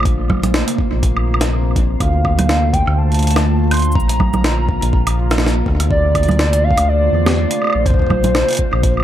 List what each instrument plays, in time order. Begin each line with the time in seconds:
Already playing: analog synth bass A#1, ambient pad F4 C5
0.00 high woodblock
0.03 ambient pad C3 A#3, kick, closed hi-hat, high woodblock
0.30 kick, low conga, high woodblock
0.43 closed hi-hat, low conga, high woodblock
0.54 snare
0.68 closed hi-hat
0.78 kick
0.92 analog synth bass A#1
1.03 kick, closed hi-hat
1.17 high woodblock
1.34 high woodblock
1.41 snare, closed hi-hat
1.76 analog synth bass A#1, kick, closed hi-hat
2.00 analog synth bass D2, ambient pad D3 A3, soft synth lead F5, kick, closed hi-hat, high woodblock
2.25 kick, high woodblock
2.39 closed hi-hat, low conga, high woodblock
2.49 snare
2.73 soft synth lead G5, kick, closed hi-hat
2.87 analog synth bass D2, high woodblock
2.98 soft synth lead A5
3.12 closed hi-hat
3.14 closed hi-hat
3.19 closed hi-hat
3.23 closed hi-hat
3.27 closed hi-hat
3.31 closed hi-hat
3.36 snare, high woodblock
3.71 soft synth lead C6, closed hi-hat, high woodblock
3.74 closed hi-hat
3.77 closed hi-hat
3.79 closed hi-hat
3.82 closed hi-hat, shaker
3.92 analog synth bass A#1, ambient pad C3 A#3 F4, soft synth lead A#5, kick, shaker
4.00 shaker
4.09 closed hi-hat
4.20 kick, low conga, high woodblock
4.34 low conga, high woodblock, shaker
4.44 snare, closed hi-hat
4.69 kick
4.82 analog synth bass A#1, closed hi-hat
4.93 kick
5.07 closed hi-hat, high woodblock
5.31 snare, high woodblock, shaker
5.38 snare
5.46 snare
5.66 analog synth bass D2, kick
5.80 closed hi-hat, high woodblock
5.90 ambient pad D3 A3 F4 C5, soft synth lead D5, kick
6.15 kick, closed hi-hat, high woodblock
6.23 closed hi-hat
6.29 closed hi-hat, low conga, high woodblock, shaker
6.39 snare
6.53 closed hi-hat
6.64 soft synth lead F5
6.71 kick
6.77 analog synth bass D2, closed hi-hat, high woodblock
6.88 soft synth lead D5
7.13 analog synth bass E2
7.26 snare, high woodblock
7.51 closed hi-hat
7.62 high woodblock
7.64 high woodblock
7.67 high woodblock
7.70 high woodblock
7.73 analog synth bass A#1, high woodblock
7.86 ambient pad C3 A#3 C5, soft synth lead C5, kick, closed hi-hat
7.90 kick
7.94 kick
7.99 kick
8.02 kick
8.07 kick
8.10 kick, low conga, high woodblock
8.24 closed hi-hat, low conga, shaker
8.35 snare, high woodblock
8.48 closed hi-hat
8.51 closed hi-hat
8.53 closed hi-hat
8.55 closed hi-hat
8.57 kick, closed hi-hat
8.73 analog synth bass A#1, high woodblock
8.83 kick, closed hi-hat
8.97 high woodblock
9.00 high woodblock